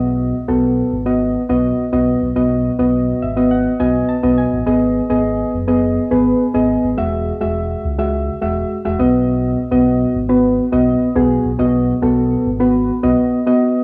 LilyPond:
<<
  \new Staff \with { instrumentName = "Synth keys" } { \time 4/4 \key b \mixolydian \tempo 4 = 104 << { r1 | r4. e''8 fis''8 gis''8 a''8 gis''8 | r1 | r1 |
r1 | r1 | } \\ { <b fis' dis''>8 r16 <b fis' a'>8. r16 <b fis' dis''>8 r16 <b fis' dis''>8 r16 <b fis' dis''>8 r16 | <b fis' dis''>8 r16 <b fis' dis''>8. r16 <b fis' dis''>8 r16 <b fis' dis''>8 r16 <b fis' dis''>8 r16 | <b gis' dis''>8 r16 <b gis' dis''>8. r16 <b gis' dis''>8 r16 <b gis' b'>8 r16 <b gis' dis''>8 r16 | <gis fis' e''>8 r16 <gis fis' e''>8. r16 <gis fis' e''>8 r16 <gis fis' e''>8 r16 <gis fis' e''>16 <b fis' dis''>8~ |
<b fis' dis''>8 r16 <b fis' dis''>8. r16 <b fis' b'>8 r16 <b fis' dis''>8 r16 <b fis' gis'>8 r16 | <b fis' dis''>8 r16 <b fis' a'>8. r16 <b fis' b'>8 r16 <b fis' dis''>8 r16 <b fis' dis''>8 r16 | } >> }
  \new Staff \with { instrumentName = "Sub bass" } { \clef bass \time 4/4 \key b \mixolydian b,,8. b,,8. gis,,4 b,,8 r16 b,,8 b,,16 | b,,8. b,,8. gis,,4 b,,8 r16 b,,8 a,,16 | gis,,8. gis,,8. fis,,4 gis,,8 r16 gis,,8 gis,,16 | e,,8. e,,8. cis,4 e,,8 r16 e,,16 b,,8~ |
b,,8. b,,8. gis,,4 b,,8 r16 b,,8 b,,16 | b,,8. b,,8. gis,,4 b,,16 r4 r16 | }
>>